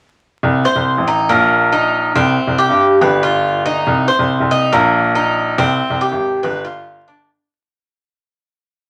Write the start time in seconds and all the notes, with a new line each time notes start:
0.43 C2
0.65 C5
0.76 C2
0.98 A1
1.08 D#4
1.29 A#1 A#3
1.72 D#4
2.16 C2 C4
2.47 C2
2.58 G4
2.69 G2
3.01 G1 B4
3.23 F4
3.66 D#4
3.87 C2
4.08 C5
4.19 C2
4.40 C2
4.51 D#4
4.72 A#1 A#3
5.15 D#4
5.58 C2 C4
5.90 C2
6.01 G4
6.12 G#1
6.43 G1 B4
6.65 F4
7.08 D4